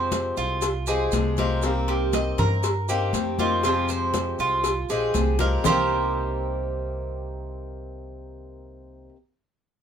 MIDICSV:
0, 0, Header, 1, 6, 480
1, 0, Start_track
1, 0, Key_signature, -3, "minor"
1, 0, Tempo, 502513
1, 1555, Time_signature, 4, 2, 24, 8
1, 9383, End_track
2, 0, Start_track
2, 0, Title_t, "Cuban tres"
2, 0, Program_c, 0, 25
2, 0, Note_on_c, 0, 72, 72
2, 341, Note_off_c, 0, 72, 0
2, 357, Note_on_c, 0, 65, 84
2, 822, Note_off_c, 0, 65, 0
2, 840, Note_on_c, 0, 68, 83
2, 1304, Note_off_c, 0, 68, 0
2, 1325, Note_on_c, 0, 70, 82
2, 1786, Note_off_c, 0, 70, 0
2, 1802, Note_on_c, 0, 67, 73
2, 2032, Note_off_c, 0, 67, 0
2, 2043, Note_on_c, 0, 75, 74
2, 2272, Note_off_c, 0, 75, 0
2, 2282, Note_on_c, 0, 70, 75
2, 2745, Note_off_c, 0, 70, 0
2, 2765, Note_on_c, 0, 67, 75
2, 3226, Note_off_c, 0, 67, 0
2, 3242, Note_on_c, 0, 65, 88
2, 3472, Note_off_c, 0, 65, 0
2, 3483, Note_on_c, 0, 65, 88
2, 3712, Note_off_c, 0, 65, 0
2, 3723, Note_on_c, 0, 72, 75
2, 4185, Note_off_c, 0, 72, 0
2, 4202, Note_on_c, 0, 65, 86
2, 4665, Note_off_c, 0, 65, 0
2, 4679, Note_on_c, 0, 68, 78
2, 5143, Note_off_c, 0, 68, 0
2, 5159, Note_on_c, 0, 70, 77
2, 5390, Note_off_c, 0, 70, 0
2, 5398, Note_on_c, 0, 60, 84
2, 5404, Note_on_c, 0, 67, 67
2, 5407, Note_on_c, 0, 70, 94
2, 8680, Note_off_c, 0, 60, 0
2, 8682, Note_off_c, 0, 67, 0
2, 8689, Note_off_c, 0, 70, 0
2, 9383, End_track
3, 0, Start_track
3, 0, Title_t, "Steel-string acoustic guitar"
3, 0, Program_c, 1, 25
3, 0, Note_on_c, 1, 48, 72
3, 0, Note_on_c, 1, 53, 74
3, 0, Note_on_c, 1, 56, 77
3, 0, Note_on_c, 1, 60, 78
3, 0, Note_on_c, 1, 67, 81
3, 586, Note_off_c, 1, 48, 0
3, 590, Note_off_c, 1, 53, 0
3, 592, Note_off_c, 1, 56, 0
3, 603, Note_off_c, 1, 60, 0
3, 606, Note_off_c, 1, 67, 0
3, 834, Note_on_c, 1, 67, 76
3, 842, Note_on_c, 1, 60, 69
3, 845, Note_on_c, 1, 56, 61
3, 850, Note_on_c, 1, 53, 56
3, 1065, Note_off_c, 1, 67, 0
3, 1069, Note_off_c, 1, 60, 0
3, 1070, Note_off_c, 1, 53, 0
3, 1070, Note_off_c, 1, 56, 0
3, 1082, Note_on_c, 1, 53, 55
3, 1089, Note_on_c, 1, 56, 55
3, 1091, Note_on_c, 1, 60, 57
3, 1095, Note_on_c, 1, 67, 56
3, 1309, Note_off_c, 1, 53, 0
3, 1312, Note_off_c, 1, 67, 0
3, 1313, Note_off_c, 1, 56, 0
3, 1314, Note_off_c, 1, 60, 0
3, 1323, Note_on_c, 1, 67, 74
3, 1327, Note_on_c, 1, 60, 73
3, 1332, Note_on_c, 1, 56, 62
3, 1334, Note_on_c, 1, 53, 63
3, 1550, Note_off_c, 1, 67, 0
3, 1551, Note_off_c, 1, 60, 0
3, 1554, Note_off_c, 1, 56, 0
3, 1555, Note_off_c, 1, 53, 0
3, 1560, Note_on_c, 1, 48, 72
3, 1569, Note_on_c, 1, 51, 67
3, 1574, Note_on_c, 1, 58, 76
3, 1578, Note_on_c, 1, 60, 77
3, 1583, Note_on_c, 1, 67, 82
3, 2508, Note_off_c, 1, 48, 0
3, 2513, Note_off_c, 1, 51, 0
3, 2515, Note_off_c, 1, 58, 0
3, 2523, Note_off_c, 1, 60, 0
3, 2527, Note_off_c, 1, 67, 0
3, 2757, Note_on_c, 1, 67, 73
3, 2762, Note_on_c, 1, 60, 72
3, 2768, Note_on_c, 1, 58, 68
3, 2770, Note_on_c, 1, 51, 62
3, 2985, Note_off_c, 1, 51, 0
3, 2987, Note_off_c, 1, 67, 0
3, 2989, Note_off_c, 1, 58, 0
3, 2989, Note_off_c, 1, 60, 0
3, 2996, Note_on_c, 1, 51, 49
3, 3001, Note_on_c, 1, 58, 49
3, 3004, Note_on_c, 1, 60, 54
3, 3007, Note_on_c, 1, 67, 57
3, 3226, Note_off_c, 1, 51, 0
3, 3226, Note_off_c, 1, 67, 0
3, 3229, Note_off_c, 1, 58, 0
3, 3230, Note_off_c, 1, 60, 0
3, 3237, Note_on_c, 1, 67, 74
3, 3242, Note_on_c, 1, 60, 70
3, 3247, Note_on_c, 1, 58, 65
3, 3251, Note_on_c, 1, 51, 69
3, 3467, Note_off_c, 1, 67, 0
3, 3469, Note_off_c, 1, 60, 0
3, 3472, Note_off_c, 1, 58, 0
3, 3474, Note_off_c, 1, 51, 0
3, 3478, Note_on_c, 1, 48, 74
3, 3485, Note_on_c, 1, 53, 70
3, 3487, Note_on_c, 1, 56, 80
3, 3493, Note_on_c, 1, 60, 74
3, 3498, Note_on_c, 1, 67, 81
3, 4427, Note_off_c, 1, 48, 0
3, 4431, Note_off_c, 1, 53, 0
3, 4432, Note_off_c, 1, 56, 0
3, 4435, Note_off_c, 1, 60, 0
3, 4437, Note_off_c, 1, 67, 0
3, 4679, Note_on_c, 1, 67, 67
3, 4686, Note_on_c, 1, 60, 64
3, 4690, Note_on_c, 1, 56, 69
3, 4692, Note_on_c, 1, 53, 65
3, 4902, Note_off_c, 1, 53, 0
3, 4908, Note_off_c, 1, 56, 0
3, 4908, Note_off_c, 1, 67, 0
3, 4911, Note_off_c, 1, 60, 0
3, 4914, Note_on_c, 1, 53, 50
3, 4919, Note_on_c, 1, 56, 54
3, 4923, Note_on_c, 1, 60, 54
3, 4928, Note_on_c, 1, 67, 60
3, 5144, Note_off_c, 1, 67, 0
3, 5145, Note_off_c, 1, 53, 0
3, 5148, Note_off_c, 1, 56, 0
3, 5150, Note_off_c, 1, 60, 0
3, 5156, Note_on_c, 1, 67, 71
3, 5162, Note_on_c, 1, 60, 71
3, 5168, Note_on_c, 1, 56, 62
3, 5170, Note_on_c, 1, 53, 59
3, 5386, Note_off_c, 1, 67, 0
3, 5389, Note_off_c, 1, 60, 0
3, 5392, Note_off_c, 1, 56, 0
3, 5394, Note_off_c, 1, 53, 0
3, 5397, Note_on_c, 1, 48, 70
3, 5402, Note_on_c, 1, 51, 78
3, 5408, Note_on_c, 1, 58, 74
3, 5410, Note_on_c, 1, 60, 81
3, 5417, Note_on_c, 1, 67, 83
3, 8740, Note_off_c, 1, 48, 0
3, 8745, Note_off_c, 1, 51, 0
3, 8751, Note_off_c, 1, 58, 0
3, 8753, Note_off_c, 1, 60, 0
3, 8760, Note_off_c, 1, 67, 0
3, 9383, End_track
4, 0, Start_track
4, 0, Title_t, "Upright bass"
4, 0, Program_c, 2, 32
4, 0, Note_on_c, 2, 41, 92
4, 290, Note_off_c, 2, 41, 0
4, 357, Note_on_c, 2, 36, 100
4, 1038, Note_off_c, 2, 36, 0
4, 1073, Note_on_c, 2, 36, 98
4, 2212, Note_off_c, 2, 36, 0
4, 2274, Note_on_c, 2, 43, 98
4, 2957, Note_off_c, 2, 43, 0
4, 2993, Note_on_c, 2, 41, 96
4, 4132, Note_off_c, 2, 41, 0
4, 4193, Note_on_c, 2, 36, 91
4, 4641, Note_off_c, 2, 36, 0
4, 4672, Note_on_c, 2, 34, 66
4, 4897, Note_off_c, 2, 34, 0
4, 4914, Note_on_c, 2, 36, 98
4, 5339, Note_off_c, 2, 36, 0
4, 5392, Note_on_c, 2, 36, 95
4, 8673, Note_off_c, 2, 36, 0
4, 9383, End_track
5, 0, Start_track
5, 0, Title_t, "Muted steel-string acoustic guitar strokes"
5, 599, Note_on_c, 9, 29, 62
5, 695, Note_off_c, 9, 29, 0
5, 2523, Note_on_c, 9, 29, 63
5, 2619, Note_off_c, 9, 29, 0
5, 4444, Note_on_c, 9, 29, 59
5, 4540, Note_off_c, 9, 29, 0
5, 9383, End_track
6, 0, Start_track
6, 0, Title_t, "Drums"
6, 113, Note_on_c, 9, 63, 86
6, 114, Note_on_c, 9, 70, 67
6, 115, Note_on_c, 9, 56, 80
6, 208, Note_off_c, 9, 63, 0
6, 209, Note_off_c, 9, 70, 0
6, 211, Note_off_c, 9, 56, 0
6, 352, Note_on_c, 9, 63, 34
6, 352, Note_on_c, 9, 70, 27
6, 448, Note_off_c, 9, 63, 0
6, 448, Note_off_c, 9, 70, 0
6, 588, Note_on_c, 9, 70, 74
6, 595, Note_on_c, 9, 56, 107
6, 597, Note_on_c, 9, 63, 32
6, 684, Note_off_c, 9, 70, 0
6, 690, Note_off_c, 9, 56, 0
6, 693, Note_off_c, 9, 63, 0
6, 829, Note_on_c, 9, 70, 67
6, 838, Note_on_c, 9, 63, 35
6, 924, Note_off_c, 9, 70, 0
6, 934, Note_off_c, 9, 63, 0
6, 1068, Note_on_c, 9, 70, 68
6, 1080, Note_on_c, 9, 56, 75
6, 1080, Note_on_c, 9, 63, 90
6, 1164, Note_off_c, 9, 70, 0
6, 1175, Note_off_c, 9, 63, 0
6, 1176, Note_off_c, 9, 56, 0
6, 1310, Note_on_c, 9, 70, 30
6, 1318, Note_on_c, 9, 56, 70
6, 1322, Note_on_c, 9, 63, 85
6, 1405, Note_off_c, 9, 70, 0
6, 1413, Note_off_c, 9, 56, 0
6, 1417, Note_off_c, 9, 63, 0
6, 1550, Note_on_c, 9, 70, 72
6, 1561, Note_on_c, 9, 56, 106
6, 1567, Note_on_c, 9, 63, 35
6, 1645, Note_off_c, 9, 70, 0
6, 1656, Note_off_c, 9, 56, 0
6, 1662, Note_off_c, 9, 63, 0
6, 1796, Note_on_c, 9, 56, 70
6, 1799, Note_on_c, 9, 63, 36
6, 1892, Note_off_c, 9, 56, 0
6, 1895, Note_off_c, 9, 63, 0
6, 2035, Note_on_c, 9, 70, 63
6, 2037, Note_on_c, 9, 56, 74
6, 2039, Note_on_c, 9, 63, 85
6, 2130, Note_off_c, 9, 70, 0
6, 2133, Note_off_c, 9, 56, 0
6, 2134, Note_off_c, 9, 63, 0
6, 2276, Note_on_c, 9, 56, 73
6, 2276, Note_on_c, 9, 70, 27
6, 2282, Note_on_c, 9, 63, 34
6, 2282, Note_on_c, 9, 64, 82
6, 2372, Note_off_c, 9, 56, 0
6, 2372, Note_off_c, 9, 70, 0
6, 2378, Note_off_c, 9, 63, 0
6, 2378, Note_off_c, 9, 64, 0
6, 2515, Note_on_c, 9, 70, 75
6, 2519, Note_on_c, 9, 56, 110
6, 2521, Note_on_c, 9, 63, 30
6, 2611, Note_off_c, 9, 70, 0
6, 2614, Note_off_c, 9, 56, 0
6, 2617, Note_off_c, 9, 63, 0
6, 2758, Note_on_c, 9, 70, 66
6, 2759, Note_on_c, 9, 63, 38
6, 2853, Note_off_c, 9, 70, 0
6, 2855, Note_off_c, 9, 63, 0
6, 2990, Note_on_c, 9, 63, 91
6, 2999, Note_on_c, 9, 56, 72
6, 3000, Note_on_c, 9, 70, 72
6, 3086, Note_off_c, 9, 63, 0
6, 3094, Note_off_c, 9, 56, 0
6, 3095, Note_off_c, 9, 70, 0
6, 3235, Note_on_c, 9, 63, 86
6, 3238, Note_on_c, 9, 70, 30
6, 3330, Note_off_c, 9, 63, 0
6, 3334, Note_off_c, 9, 70, 0
6, 3471, Note_on_c, 9, 56, 102
6, 3478, Note_on_c, 9, 70, 72
6, 3481, Note_on_c, 9, 63, 34
6, 3567, Note_off_c, 9, 56, 0
6, 3574, Note_off_c, 9, 70, 0
6, 3576, Note_off_c, 9, 63, 0
6, 3712, Note_on_c, 9, 70, 55
6, 3716, Note_on_c, 9, 63, 33
6, 3808, Note_off_c, 9, 70, 0
6, 3811, Note_off_c, 9, 63, 0
6, 3951, Note_on_c, 9, 56, 79
6, 3955, Note_on_c, 9, 63, 88
6, 3957, Note_on_c, 9, 70, 63
6, 4047, Note_off_c, 9, 56, 0
6, 4051, Note_off_c, 9, 63, 0
6, 4052, Note_off_c, 9, 70, 0
6, 4194, Note_on_c, 9, 70, 26
6, 4195, Note_on_c, 9, 63, 38
6, 4289, Note_off_c, 9, 70, 0
6, 4290, Note_off_c, 9, 63, 0
6, 4430, Note_on_c, 9, 56, 110
6, 4436, Note_on_c, 9, 70, 73
6, 4440, Note_on_c, 9, 63, 30
6, 4525, Note_off_c, 9, 56, 0
6, 4532, Note_off_c, 9, 70, 0
6, 4535, Note_off_c, 9, 63, 0
6, 4675, Note_on_c, 9, 70, 64
6, 4683, Note_on_c, 9, 63, 35
6, 4770, Note_off_c, 9, 70, 0
6, 4779, Note_off_c, 9, 63, 0
6, 4910, Note_on_c, 9, 56, 68
6, 4916, Note_on_c, 9, 63, 90
6, 4917, Note_on_c, 9, 70, 67
6, 5005, Note_off_c, 9, 56, 0
6, 5011, Note_off_c, 9, 63, 0
6, 5012, Note_off_c, 9, 70, 0
6, 5147, Note_on_c, 9, 56, 68
6, 5147, Note_on_c, 9, 60, 72
6, 5155, Note_on_c, 9, 70, 31
6, 5156, Note_on_c, 9, 63, 83
6, 5243, Note_off_c, 9, 56, 0
6, 5243, Note_off_c, 9, 60, 0
6, 5251, Note_off_c, 9, 63, 0
6, 5251, Note_off_c, 9, 70, 0
6, 5387, Note_on_c, 9, 61, 99
6, 5396, Note_on_c, 9, 70, 98
6, 5398, Note_on_c, 9, 64, 96
6, 5483, Note_off_c, 9, 61, 0
6, 5491, Note_off_c, 9, 70, 0
6, 5493, Note_off_c, 9, 64, 0
6, 9383, End_track
0, 0, End_of_file